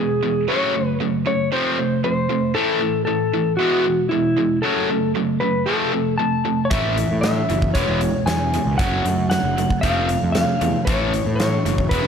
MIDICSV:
0, 0, Header, 1, 6, 480
1, 0, Start_track
1, 0, Key_signature, 3, "major"
1, 0, Tempo, 519481
1, 451, Time_signature, 4, 2, 24, 8
1, 11153, End_track
2, 0, Start_track
2, 0, Title_t, "Electric slide guitar"
2, 0, Program_c, 0, 29
2, 0, Note_on_c, 0, 68, 72
2, 447, Note_on_c, 0, 73, 76
2, 455, Note_off_c, 0, 68, 0
2, 894, Note_off_c, 0, 73, 0
2, 1174, Note_on_c, 0, 73, 92
2, 1404, Note_off_c, 0, 73, 0
2, 1408, Note_on_c, 0, 72, 85
2, 1854, Note_off_c, 0, 72, 0
2, 1887, Note_on_c, 0, 72, 91
2, 2353, Note_on_c, 0, 69, 87
2, 2381, Note_off_c, 0, 72, 0
2, 2807, Note_off_c, 0, 69, 0
2, 2818, Note_on_c, 0, 69, 85
2, 3277, Note_off_c, 0, 69, 0
2, 3297, Note_on_c, 0, 66, 79
2, 3776, Note_off_c, 0, 66, 0
2, 3780, Note_on_c, 0, 64, 82
2, 4238, Note_off_c, 0, 64, 0
2, 4268, Note_on_c, 0, 69, 76
2, 4722, Note_off_c, 0, 69, 0
2, 4990, Note_on_c, 0, 71, 84
2, 5220, Note_off_c, 0, 71, 0
2, 5228, Note_on_c, 0, 69, 81
2, 5682, Note_off_c, 0, 69, 0
2, 5706, Note_on_c, 0, 81, 89
2, 6143, Note_off_c, 0, 81, 0
2, 6145, Note_on_c, 0, 73, 62
2, 6195, Note_on_c, 0, 76, 88
2, 6208, Note_off_c, 0, 73, 0
2, 6653, Note_off_c, 0, 76, 0
2, 6664, Note_on_c, 0, 76, 83
2, 7150, Note_on_c, 0, 73, 79
2, 7170, Note_off_c, 0, 76, 0
2, 7632, Note_on_c, 0, 80, 88
2, 7653, Note_off_c, 0, 73, 0
2, 8107, Note_off_c, 0, 80, 0
2, 8110, Note_on_c, 0, 78, 89
2, 8579, Note_off_c, 0, 78, 0
2, 8590, Note_on_c, 0, 78, 89
2, 9063, Note_off_c, 0, 78, 0
2, 9066, Note_on_c, 0, 77, 87
2, 9528, Note_off_c, 0, 77, 0
2, 9539, Note_on_c, 0, 77, 84
2, 10025, Note_on_c, 0, 73, 91
2, 10048, Note_off_c, 0, 77, 0
2, 10482, Note_off_c, 0, 73, 0
2, 10493, Note_on_c, 0, 73, 82
2, 10956, Note_off_c, 0, 73, 0
2, 10989, Note_on_c, 0, 71, 79
2, 11153, Note_off_c, 0, 71, 0
2, 11153, End_track
3, 0, Start_track
3, 0, Title_t, "Overdriven electric guitar"
3, 0, Program_c, 1, 29
3, 0, Note_on_c, 1, 52, 52
3, 0, Note_on_c, 1, 56, 65
3, 183, Note_off_c, 1, 52, 0
3, 185, Note_off_c, 1, 56, 0
3, 210, Note_on_c, 1, 52, 54
3, 212, Note_on_c, 1, 56, 64
3, 426, Note_off_c, 1, 52, 0
3, 427, Note_off_c, 1, 56, 0
3, 443, Note_on_c, 1, 54, 76
3, 448, Note_on_c, 1, 57, 85
3, 455, Note_on_c, 1, 61, 82
3, 672, Note_off_c, 1, 54, 0
3, 674, Note_off_c, 1, 57, 0
3, 678, Note_off_c, 1, 61, 0
3, 685, Note_on_c, 1, 54, 56
3, 685, Note_on_c, 1, 57, 65
3, 903, Note_off_c, 1, 54, 0
3, 903, Note_off_c, 1, 57, 0
3, 927, Note_on_c, 1, 54, 59
3, 928, Note_on_c, 1, 57, 73
3, 1144, Note_off_c, 1, 54, 0
3, 1144, Note_off_c, 1, 57, 0
3, 1162, Note_on_c, 1, 54, 61
3, 1168, Note_on_c, 1, 57, 72
3, 1381, Note_off_c, 1, 54, 0
3, 1384, Note_off_c, 1, 57, 0
3, 1403, Note_on_c, 1, 53, 85
3, 1408, Note_on_c, 1, 57, 84
3, 1413, Note_on_c, 1, 60, 84
3, 1631, Note_off_c, 1, 53, 0
3, 1633, Note_off_c, 1, 57, 0
3, 1636, Note_off_c, 1, 60, 0
3, 1651, Note_on_c, 1, 53, 60
3, 1655, Note_on_c, 1, 57, 64
3, 1865, Note_off_c, 1, 53, 0
3, 1867, Note_off_c, 1, 57, 0
3, 1886, Note_on_c, 1, 53, 64
3, 1892, Note_on_c, 1, 57, 63
3, 2102, Note_off_c, 1, 53, 0
3, 2105, Note_off_c, 1, 57, 0
3, 2120, Note_on_c, 1, 53, 61
3, 2124, Note_on_c, 1, 57, 71
3, 2339, Note_off_c, 1, 53, 0
3, 2341, Note_off_c, 1, 57, 0
3, 2350, Note_on_c, 1, 45, 78
3, 2354, Note_on_c, 1, 52, 77
3, 2361, Note_on_c, 1, 57, 85
3, 2584, Note_off_c, 1, 45, 0
3, 2586, Note_off_c, 1, 52, 0
3, 2589, Note_off_c, 1, 57, 0
3, 2596, Note_on_c, 1, 45, 61
3, 2599, Note_on_c, 1, 52, 68
3, 2817, Note_off_c, 1, 45, 0
3, 2818, Note_off_c, 1, 52, 0
3, 2838, Note_on_c, 1, 45, 65
3, 2841, Note_on_c, 1, 52, 68
3, 3058, Note_off_c, 1, 45, 0
3, 3060, Note_off_c, 1, 52, 0
3, 3082, Note_on_c, 1, 45, 64
3, 3083, Note_on_c, 1, 52, 73
3, 3300, Note_off_c, 1, 45, 0
3, 3300, Note_off_c, 1, 52, 0
3, 3315, Note_on_c, 1, 52, 90
3, 3321, Note_on_c, 1, 56, 91
3, 3328, Note_on_c, 1, 59, 92
3, 3546, Note_off_c, 1, 52, 0
3, 3549, Note_off_c, 1, 56, 0
3, 3552, Note_off_c, 1, 59, 0
3, 3556, Note_on_c, 1, 52, 61
3, 3563, Note_on_c, 1, 56, 63
3, 3777, Note_off_c, 1, 52, 0
3, 3780, Note_off_c, 1, 56, 0
3, 3801, Note_on_c, 1, 52, 67
3, 3805, Note_on_c, 1, 56, 66
3, 4019, Note_off_c, 1, 52, 0
3, 4021, Note_off_c, 1, 56, 0
3, 4036, Note_on_c, 1, 52, 57
3, 4042, Note_on_c, 1, 56, 62
3, 4257, Note_off_c, 1, 52, 0
3, 4260, Note_off_c, 1, 56, 0
3, 4280, Note_on_c, 1, 54, 77
3, 4286, Note_on_c, 1, 57, 73
3, 4288, Note_on_c, 1, 61, 85
3, 4508, Note_off_c, 1, 54, 0
3, 4511, Note_off_c, 1, 57, 0
3, 4512, Note_off_c, 1, 61, 0
3, 4524, Note_on_c, 1, 54, 59
3, 4528, Note_on_c, 1, 57, 69
3, 4740, Note_off_c, 1, 54, 0
3, 4743, Note_off_c, 1, 57, 0
3, 4759, Note_on_c, 1, 54, 71
3, 4764, Note_on_c, 1, 57, 66
3, 4978, Note_off_c, 1, 54, 0
3, 4980, Note_off_c, 1, 57, 0
3, 4996, Note_on_c, 1, 54, 58
3, 4999, Note_on_c, 1, 57, 62
3, 5216, Note_off_c, 1, 54, 0
3, 5218, Note_off_c, 1, 57, 0
3, 5234, Note_on_c, 1, 53, 81
3, 5238, Note_on_c, 1, 57, 82
3, 5245, Note_on_c, 1, 60, 91
3, 5465, Note_off_c, 1, 53, 0
3, 5467, Note_off_c, 1, 57, 0
3, 5471, Note_off_c, 1, 60, 0
3, 5476, Note_on_c, 1, 53, 62
3, 5478, Note_on_c, 1, 57, 66
3, 5697, Note_off_c, 1, 53, 0
3, 5698, Note_off_c, 1, 57, 0
3, 5722, Note_on_c, 1, 53, 52
3, 5725, Note_on_c, 1, 57, 62
3, 5940, Note_off_c, 1, 53, 0
3, 5941, Note_off_c, 1, 57, 0
3, 5959, Note_on_c, 1, 53, 56
3, 5963, Note_on_c, 1, 57, 60
3, 6178, Note_off_c, 1, 53, 0
3, 6180, Note_off_c, 1, 57, 0
3, 6198, Note_on_c, 1, 45, 74
3, 6202, Note_on_c, 1, 52, 82
3, 6204, Note_on_c, 1, 57, 83
3, 6427, Note_off_c, 1, 45, 0
3, 6429, Note_off_c, 1, 52, 0
3, 6430, Note_off_c, 1, 57, 0
3, 6446, Note_on_c, 1, 45, 57
3, 6446, Note_on_c, 1, 52, 65
3, 6661, Note_off_c, 1, 52, 0
3, 6662, Note_off_c, 1, 45, 0
3, 6693, Note_on_c, 1, 45, 70
3, 6693, Note_on_c, 1, 52, 73
3, 6905, Note_off_c, 1, 45, 0
3, 6905, Note_off_c, 1, 52, 0
3, 6929, Note_on_c, 1, 45, 57
3, 6936, Note_on_c, 1, 52, 68
3, 7143, Note_off_c, 1, 45, 0
3, 7147, Note_off_c, 1, 52, 0
3, 7160, Note_on_c, 1, 52, 78
3, 7165, Note_on_c, 1, 59, 91
3, 7166, Note_on_c, 1, 56, 86
3, 7388, Note_off_c, 1, 52, 0
3, 7391, Note_off_c, 1, 56, 0
3, 7391, Note_off_c, 1, 59, 0
3, 7411, Note_on_c, 1, 56, 74
3, 7412, Note_on_c, 1, 52, 63
3, 7624, Note_off_c, 1, 56, 0
3, 7625, Note_off_c, 1, 52, 0
3, 7651, Note_on_c, 1, 52, 66
3, 7654, Note_on_c, 1, 56, 62
3, 7865, Note_off_c, 1, 52, 0
3, 7866, Note_off_c, 1, 56, 0
3, 7891, Note_on_c, 1, 52, 57
3, 7899, Note_on_c, 1, 56, 65
3, 8105, Note_off_c, 1, 52, 0
3, 8109, Note_off_c, 1, 56, 0
3, 8123, Note_on_c, 1, 54, 74
3, 8131, Note_on_c, 1, 57, 78
3, 8131, Note_on_c, 1, 61, 86
3, 8350, Note_off_c, 1, 54, 0
3, 8354, Note_off_c, 1, 61, 0
3, 8355, Note_off_c, 1, 57, 0
3, 8371, Note_on_c, 1, 54, 62
3, 8377, Note_on_c, 1, 57, 71
3, 8585, Note_off_c, 1, 54, 0
3, 8588, Note_off_c, 1, 57, 0
3, 8614, Note_on_c, 1, 54, 67
3, 8619, Note_on_c, 1, 57, 68
3, 8826, Note_off_c, 1, 54, 0
3, 8829, Note_off_c, 1, 57, 0
3, 8851, Note_on_c, 1, 57, 71
3, 8852, Note_on_c, 1, 54, 64
3, 9065, Note_off_c, 1, 54, 0
3, 9065, Note_off_c, 1, 57, 0
3, 9086, Note_on_c, 1, 53, 92
3, 9088, Note_on_c, 1, 57, 88
3, 9096, Note_on_c, 1, 60, 99
3, 9312, Note_off_c, 1, 53, 0
3, 9314, Note_off_c, 1, 57, 0
3, 9318, Note_off_c, 1, 60, 0
3, 9324, Note_on_c, 1, 53, 67
3, 9329, Note_on_c, 1, 57, 71
3, 9542, Note_off_c, 1, 53, 0
3, 9544, Note_off_c, 1, 57, 0
3, 9562, Note_on_c, 1, 53, 63
3, 9567, Note_on_c, 1, 57, 62
3, 9781, Note_off_c, 1, 53, 0
3, 9783, Note_off_c, 1, 57, 0
3, 9810, Note_on_c, 1, 53, 56
3, 9814, Note_on_c, 1, 57, 66
3, 10025, Note_off_c, 1, 53, 0
3, 10027, Note_off_c, 1, 57, 0
3, 10046, Note_on_c, 1, 45, 82
3, 10050, Note_on_c, 1, 52, 84
3, 10054, Note_on_c, 1, 57, 85
3, 10273, Note_off_c, 1, 45, 0
3, 10275, Note_off_c, 1, 52, 0
3, 10277, Note_off_c, 1, 57, 0
3, 10288, Note_on_c, 1, 45, 60
3, 10290, Note_on_c, 1, 52, 70
3, 10504, Note_off_c, 1, 45, 0
3, 10505, Note_off_c, 1, 52, 0
3, 10532, Note_on_c, 1, 45, 62
3, 10535, Note_on_c, 1, 52, 76
3, 10746, Note_off_c, 1, 45, 0
3, 10748, Note_off_c, 1, 52, 0
3, 10769, Note_on_c, 1, 45, 61
3, 10771, Note_on_c, 1, 52, 65
3, 10985, Note_off_c, 1, 45, 0
3, 10986, Note_off_c, 1, 52, 0
3, 11011, Note_on_c, 1, 52, 89
3, 11019, Note_on_c, 1, 56, 87
3, 11025, Note_on_c, 1, 59, 88
3, 11153, Note_off_c, 1, 52, 0
3, 11153, Note_off_c, 1, 56, 0
3, 11153, Note_off_c, 1, 59, 0
3, 11153, End_track
4, 0, Start_track
4, 0, Title_t, "Distorted electric guitar"
4, 0, Program_c, 2, 30
4, 0, Note_on_c, 2, 40, 59
4, 0, Note_on_c, 2, 47, 75
4, 191, Note_off_c, 2, 40, 0
4, 191, Note_off_c, 2, 47, 0
4, 214, Note_on_c, 2, 40, 64
4, 217, Note_on_c, 2, 47, 74
4, 428, Note_off_c, 2, 40, 0
4, 429, Note_off_c, 2, 47, 0
4, 456, Note_on_c, 2, 42, 76
4, 461, Note_on_c, 2, 49, 88
4, 465, Note_on_c, 2, 54, 99
4, 678, Note_off_c, 2, 42, 0
4, 681, Note_off_c, 2, 49, 0
4, 683, Note_off_c, 2, 54, 0
4, 698, Note_on_c, 2, 42, 59
4, 700, Note_on_c, 2, 49, 73
4, 910, Note_off_c, 2, 42, 0
4, 911, Note_off_c, 2, 49, 0
4, 933, Note_on_c, 2, 42, 68
4, 938, Note_on_c, 2, 49, 75
4, 1147, Note_off_c, 2, 42, 0
4, 1149, Note_off_c, 2, 49, 0
4, 1169, Note_on_c, 2, 42, 65
4, 1173, Note_on_c, 2, 49, 64
4, 1385, Note_off_c, 2, 42, 0
4, 1387, Note_off_c, 2, 49, 0
4, 1410, Note_on_c, 2, 41, 83
4, 1414, Note_on_c, 2, 48, 87
4, 1418, Note_on_c, 2, 53, 85
4, 1635, Note_off_c, 2, 41, 0
4, 1636, Note_off_c, 2, 48, 0
4, 1639, Note_off_c, 2, 53, 0
4, 1649, Note_on_c, 2, 41, 60
4, 1654, Note_on_c, 2, 48, 67
4, 1864, Note_off_c, 2, 41, 0
4, 1867, Note_off_c, 2, 48, 0
4, 1885, Note_on_c, 2, 41, 62
4, 1890, Note_on_c, 2, 48, 71
4, 2102, Note_off_c, 2, 41, 0
4, 2105, Note_off_c, 2, 48, 0
4, 2128, Note_on_c, 2, 41, 59
4, 2131, Note_on_c, 2, 48, 69
4, 2344, Note_off_c, 2, 41, 0
4, 2345, Note_off_c, 2, 48, 0
4, 2365, Note_on_c, 2, 45, 81
4, 2370, Note_on_c, 2, 52, 89
4, 2377, Note_on_c, 2, 57, 97
4, 2591, Note_off_c, 2, 45, 0
4, 2594, Note_off_c, 2, 52, 0
4, 2597, Note_off_c, 2, 57, 0
4, 2604, Note_on_c, 2, 45, 64
4, 2607, Note_on_c, 2, 52, 70
4, 2821, Note_off_c, 2, 45, 0
4, 2822, Note_off_c, 2, 52, 0
4, 2840, Note_on_c, 2, 45, 63
4, 2843, Note_on_c, 2, 52, 71
4, 3059, Note_off_c, 2, 45, 0
4, 3061, Note_off_c, 2, 52, 0
4, 3086, Note_on_c, 2, 45, 59
4, 3089, Note_on_c, 2, 52, 66
4, 3302, Note_off_c, 2, 45, 0
4, 3303, Note_off_c, 2, 52, 0
4, 3323, Note_on_c, 2, 40, 89
4, 3331, Note_on_c, 2, 47, 89
4, 3335, Note_on_c, 2, 52, 88
4, 3550, Note_off_c, 2, 40, 0
4, 3554, Note_off_c, 2, 47, 0
4, 3556, Note_off_c, 2, 52, 0
4, 3563, Note_on_c, 2, 40, 61
4, 3565, Note_on_c, 2, 47, 67
4, 3780, Note_off_c, 2, 40, 0
4, 3781, Note_off_c, 2, 47, 0
4, 3809, Note_on_c, 2, 40, 62
4, 3815, Note_on_c, 2, 47, 76
4, 4023, Note_off_c, 2, 40, 0
4, 4026, Note_off_c, 2, 47, 0
4, 4047, Note_on_c, 2, 40, 64
4, 4050, Note_on_c, 2, 47, 70
4, 4262, Note_off_c, 2, 40, 0
4, 4263, Note_off_c, 2, 47, 0
4, 4281, Note_on_c, 2, 42, 91
4, 4286, Note_on_c, 2, 49, 85
4, 4290, Note_on_c, 2, 54, 96
4, 4509, Note_off_c, 2, 42, 0
4, 4511, Note_off_c, 2, 49, 0
4, 4513, Note_off_c, 2, 54, 0
4, 4532, Note_on_c, 2, 42, 56
4, 4536, Note_on_c, 2, 49, 66
4, 4745, Note_off_c, 2, 42, 0
4, 4746, Note_off_c, 2, 49, 0
4, 4774, Note_on_c, 2, 42, 62
4, 4776, Note_on_c, 2, 49, 72
4, 4986, Note_off_c, 2, 42, 0
4, 4986, Note_off_c, 2, 49, 0
4, 5011, Note_on_c, 2, 42, 65
4, 5017, Note_on_c, 2, 49, 64
4, 5224, Note_off_c, 2, 42, 0
4, 5227, Note_off_c, 2, 49, 0
4, 5248, Note_on_c, 2, 41, 90
4, 5250, Note_on_c, 2, 48, 87
4, 5254, Note_on_c, 2, 53, 93
4, 5472, Note_off_c, 2, 41, 0
4, 5473, Note_off_c, 2, 48, 0
4, 5475, Note_off_c, 2, 53, 0
4, 5488, Note_on_c, 2, 41, 54
4, 5491, Note_on_c, 2, 48, 69
4, 5703, Note_off_c, 2, 41, 0
4, 5704, Note_off_c, 2, 48, 0
4, 5726, Note_on_c, 2, 41, 60
4, 5731, Note_on_c, 2, 48, 75
4, 5942, Note_off_c, 2, 41, 0
4, 5944, Note_off_c, 2, 48, 0
4, 5962, Note_on_c, 2, 41, 55
4, 5967, Note_on_c, 2, 48, 66
4, 6180, Note_off_c, 2, 41, 0
4, 6182, Note_off_c, 2, 48, 0
4, 6202, Note_on_c, 2, 45, 90
4, 6210, Note_on_c, 2, 52, 91
4, 6213, Note_on_c, 2, 57, 89
4, 6429, Note_off_c, 2, 45, 0
4, 6433, Note_off_c, 2, 52, 0
4, 6435, Note_off_c, 2, 57, 0
4, 6448, Note_on_c, 2, 45, 65
4, 6450, Note_on_c, 2, 52, 69
4, 6663, Note_off_c, 2, 45, 0
4, 6664, Note_off_c, 2, 52, 0
4, 6688, Note_on_c, 2, 45, 70
4, 6692, Note_on_c, 2, 52, 63
4, 6903, Note_off_c, 2, 45, 0
4, 6905, Note_off_c, 2, 52, 0
4, 6919, Note_on_c, 2, 45, 66
4, 6925, Note_on_c, 2, 52, 64
4, 7138, Note_off_c, 2, 45, 0
4, 7141, Note_off_c, 2, 52, 0
4, 7159, Note_on_c, 2, 40, 89
4, 7163, Note_on_c, 2, 47, 83
4, 7173, Note_on_c, 2, 52, 87
4, 7388, Note_off_c, 2, 40, 0
4, 7390, Note_off_c, 2, 47, 0
4, 7395, Note_off_c, 2, 52, 0
4, 7400, Note_on_c, 2, 40, 56
4, 7404, Note_on_c, 2, 47, 68
4, 7619, Note_off_c, 2, 40, 0
4, 7621, Note_off_c, 2, 47, 0
4, 7645, Note_on_c, 2, 40, 66
4, 7653, Note_on_c, 2, 47, 72
4, 7862, Note_off_c, 2, 40, 0
4, 7866, Note_off_c, 2, 47, 0
4, 7890, Note_on_c, 2, 40, 63
4, 7893, Note_on_c, 2, 47, 74
4, 8104, Note_off_c, 2, 40, 0
4, 8106, Note_off_c, 2, 47, 0
4, 8126, Note_on_c, 2, 42, 77
4, 8134, Note_on_c, 2, 49, 90
4, 8140, Note_on_c, 2, 54, 97
4, 8352, Note_off_c, 2, 42, 0
4, 8356, Note_off_c, 2, 49, 0
4, 8359, Note_off_c, 2, 54, 0
4, 8369, Note_on_c, 2, 42, 59
4, 8372, Note_on_c, 2, 49, 67
4, 8584, Note_off_c, 2, 42, 0
4, 8585, Note_off_c, 2, 49, 0
4, 8605, Note_on_c, 2, 42, 62
4, 8610, Note_on_c, 2, 49, 69
4, 8822, Note_off_c, 2, 42, 0
4, 8825, Note_off_c, 2, 49, 0
4, 8845, Note_on_c, 2, 42, 64
4, 8850, Note_on_c, 2, 49, 74
4, 9062, Note_off_c, 2, 42, 0
4, 9064, Note_off_c, 2, 49, 0
4, 9084, Note_on_c, 2, 41, 77
4, 9090, Note_on_c, 2, 48, 93
4, 9093, Note_on_c, 2, 53, 91
4, 9311, Note_off_c, 2, 41, 0
4, 9314, Note_off_c, 2, 48, 0
4, 9316, Note_off_c, 2, 53, 0
4, 9323, Note_on_c, 2, 41, 59
4, 9327, Note_on_c, 2, 48, 67
4, 9541, Note_off_c, 2, 41, 0
4, 9543, Note_off_c, 2, 48, 0
4, 9566, Note_on_c, 2, 41, 68
4, 9567, Note_on_c, 2, 48, 69
4, 9783, Note_off_c, 2, 41, 0
4, 9783, Note_off_c, 2, 48, 0
4, 9805, Note_on_c, 2, 41, 62
4, 9811, Note_on_c, 2, 48, 73
4, 10022, Note_off_c, 2, 41, 0
4, 10025, Note_off_c, 2, 48, 0
4, 10048, Note_on_c, 2, 45, 92
4, 10054, Note_on_c, 2, 52, 80
4, 10058, Note_on_c, 2, 57, 92
4, 10274, Note_off_c, 2, 45, 0
4, 10277, Note_off_c, 2, 52, 0
4, 10278, Note_off_c, 2, 57, 0
4, 10290, Note_on_c, 2, 45, 65
4, 10292, Note_on_c, 2, 52, 68
4, 10505, Note_off_c, 2, 45, 0
4, 10506, Note_off_c, 2, 52, 0
4, 10532, Note_on_c, 2, 45, 62
4, 10535, Note_on_c, 2, 52, 71
4, 10746, Note_off_c, 2, 45, 0
4, 10748, Note_off_c, 2, 52, 0
4, 10775, Note_on_c, 2, 45, 60
4, 10781, Note_on_c, 2, 52, 62
4, 10988, Note_off_c, 2, 45, 0
4, 10991, Note_off_c, 2, 52, 0
4, 11008, Note_on_c, 2, 40, 88
4, 11013, Note_on_c, 2, 47, 97
4, 11015, Note_on_c, 2, 52, 90
4, 11153, Note_off_c, 2, 40, 0
4, 11153, Note_off_c, 2, 47, 0
4, 11153, Note_off_c, 2, 52, 0
4, 11153, End_track
5, 0, Start_track
5, 0, Title_t, "Picked electric bass"
5, 0, Program_c, 3, 34
5, 6204, Note_on_c, 3, 33, 102
5, 6489, Note_off_c, 3, 33, 0
5, 6571, Note_on_c, 3, 45, 76
5, 6853, Note_off_c, 3, 45, 0
5, 6929, Note_on_c, 3, 30, 78
5, 7117, Note_off_c, 3, 30, 0
5, 7164, Note_on_c, 3, 28, 95
5, 7259, Note_off_c, 3, 28, 0
5, 7274, Note_on_c, 3, 28, 71
5, 7469, Note_off_c, 3, 28, 0
5, 7637, Note_on_c, 3, 40, 87
5, 7925, Note_off_c, 3, 40, 0
5, 8001, Note_on_c, 3, 37, 73
5, 8098, Note_off_c, 3, 37, 0
5, 8123, Note_on_c, 3, 30, 94
5, 8314, Note_off_c, 3, 30, 0
5, 8360, Note_on_c, 3, 42, 81
5, 8647, Note_off_c, 3, 42, 0
5, 8717, Note_on_c, 3, 30, 94
5, 8911, Note_off_c, 3, 30, 0
5, 9088, Note_on_c, 3, 29, 89
5, 9372, Note_off_c, 3, 29, 0
5, 9457, Note_on_c, 3, 41, 77
5, 9643, Note_off_c, 3, 41, 0
5, 9809, Note_on_c, 3, 40, 73
5, 9903, Note_off_c, 3, 40, 0
5, 10044, Note_on_c, 3, 33, 109
5, 10330, Note_off_c, 3, 33, 0
5, 10408, Note_on_c, 3, 45, 75
5, 10692, Note_off_c, 3, 45, 0
5, 10771, Note_on_c, 3, 30, 79
5, 10960, Note_off_c, 3, 30, 0
5, 11007, Note_on_c, 3, 28, 98
5, 11102, Note_off_c, 3, 28, 0
5, 11117, Note_on_c, 3, 28, 78
5, 11153, Note_off_c, 3, 28, 0
5, 11153, End_track
6, 0, Start_track
6, 0, Title_t, "Drums"
6, 6198, Note_on_c, 9, 42, 73
6, 6201, Note_on_c, 9, 36, 98
6, 6291, Note_off_c, 9, 42, 0
6, 6294, Note_off_c, 9, 36, 0
6, 6445, Note_on_c, 9, 42, 57
6, 6538, Note_off_c, 9, 42, 0
6, 6685, Note_on_c, 9, 42, 68
6, 6688, Note_on_c, 9, 38, 104
6, 6777, Note_off_c, 9, 42, 0
6, 6781, Note_off_c, 9, 38, 0
6, 6926, Note_on_c, 9, 42, 59
6, 7019, Note_off_c, 9, 42, 0
6, 7043, Note_on_c, 9, 36, 79
6, 7135, Note_off_c, 9, 36, 0
6, 7158, Note_on_c, 9, 42, 74
6, 7162, Note_on_c, 9, 36, 88
6, 7251, Note_off_c, 9, 42, 0
6, 7255, Note_off_c, 9, 36, 0
6, 7400, Note_on_c, 9, 42, 56
6, 7493, Note_off_c, 9, 42, 0
6, 7645, Note_on_c, 9, 42, 78
6, 7649, Note_on_c, 9, 38, 100
6, 7738, Note_off_c, 9, 42, 0
6, 7741, Note_off_c, 9, 38, 0
6, 7888, Note_on_c, 9, 42, 55
6, 7980, Note_off_c, 9, 42, 0
6, 8123, Note_on_c, 9, 42, 81
6, 8125, Note_on_c, 9, 36, 98
6, 8215, Note_off_c, 9, 42, 0
6, 8218, Note_off_c, 9, 36, 0
6, 8368, Note_on_c, 9, 42, 65
6, 8460, Note_off_c, 9, 42, 0
6, 8603, Note_on_c, 9, 42, 87
6, 8606, Note_on_c, 9, 38, 104
6, 8695, Note_off_c, 9, 42, 0
6, 8699, Note_off_c, 9, 38, 0
6, 8853, Note_on_c, 9, 42, 66
6, 8946, Note_off_c, 9, 42, 0
6, 8967, Note_on_c, 9, 36, 75
6, 9059, Note_off_c, 9, 36, 0
6, 9084, Note_on_c, 9, 42, 80
6, 9086, Note_on_c, 9, 36, 85
6, 9176, Note_off_c, 9, 42, 0
6, 9179, Note_off_c, 9, 36, 0
6, 9323, Note_on_c, 9, 42, 59
6, 9415, Note_off_c, 9, 42, 0
6, 9563, Note_on_c, 9, 42, 80
6, 9567, Note_on_c, 9, 38, 96
6, 9655, Note_off_c, 9, 42, 0
6, 9659, Note_off_c, 9, 38, 0
6, 9806, Note_on_c, 9, 42, 55
6, 9899, Note_off_c, 9, 42, 0
6, 10045, Note_on_c, 9, 42, 78
6, 10048, Note_on_c, 9, 36, 103
6, 10138, Note_off_c, 9, 42, 0
6, 10140, Note_off_c, 9, 36, 0
6, 10290, Note_on_c, 9, 42, 59
6, 10382, Note_off_c, 9, 42, 0
6, 10531, Note_on_c, 9, 42, 76
6, 10535, Note_on_c, 9, 38, 101
6, 10624, Note_off_c, 9, 42, 0
6, 10627, Note_off_c, 9, 38, 0
6, 10773, Note_on_c, 9, 42, 56
6, 10865, Note_off_c, 9, 42, 0
6, 10888, Note_on_c, 9, 36, 72
6, 10980, Note_off_c, 9, 36, 0
6, 11007, Note_on_c, 9, 36, 91
6, 11007, Note_on_c, 9, 42, 74
6, 11100, Note_off_c, 9, 36, 0
6, 11100, Note_off_c, 9, 42, 0
6, 11153, End_track
0, 0, End_of_file